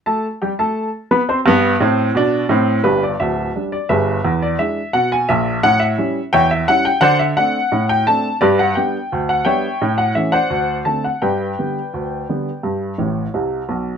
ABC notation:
X:1
M:2/4
L:1/16
Q:1/4=86
K:G
V:1 name="Upright piano"
[A,Aa]2 [G,Gg] [A,Aa]3 [B,Bb] [Ccc'] | z8 | [DGB] d e3 d [_ABe]2- | [_ABe] d e2 f ^g e2 |
f e3 [^ceg] e f g | [cdf] e f3 g a2 | [GBd] f g3 f [^ceg]2- | [^ceg] f e [=cdf]3 a f |
[Bdg]8- | [Bdg]6 z2 |]
V:2 name="Upright piano" clef=bass
z8 | [G,,B,]2 [A,,C]2 [B,,D]2 [A,,C]2 | [G,,,G,,]2 [D,,,D,,]2 [G,D]2 [G,,,G,,]2 | E,,2 [^G,DE]2 B,,2 [_B,,,_B,,]2 |
A,,2 [G,^CE]2 E,,2 [G,CE]2 | D,2 [A,CD]2 A,,2 [A,CD]2 | G,,2 [G,B,D]2 D,,2 [G,B,D]2 | A,,2 [E,A,^C]2 D,,2 [D,A,=C]2 |
G,,2 [D,G,B,]2 D,,2 [D,G,B,]2 | G,,2 [A,,,A,,]2 [C,,C,]2 [B,,,B,,]2 |]